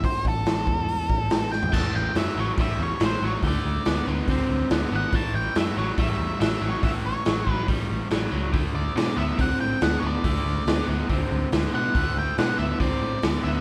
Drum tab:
CC |----------------|x---------------|----------------|----------------|
HH |o---o---o---o---|----o---o---o---|o---o---o---o---|o---o---o---o---|
SD |----o-------o-o-|----o-------o---|----o-------o---|----o-------o---|
FT |---------------o|----------------|----------------|----------------|
BD |o-o---o---o-----|o-------o-------|o-------o-------|o-------o-------|

CC |----------------|----------------|----------------|----------------|
HH |o---o---o---o---|o---o---o---o---|o---o---o---o---|o---o---o---o---|
SD |----o-------o---|----o-------o---|----o-------o---|----o-------o---|
FT |----------------|----------------|----------------|----------------|
BD |o-----o-o-------|o-------o-------|o-------o-------|o-------o-------|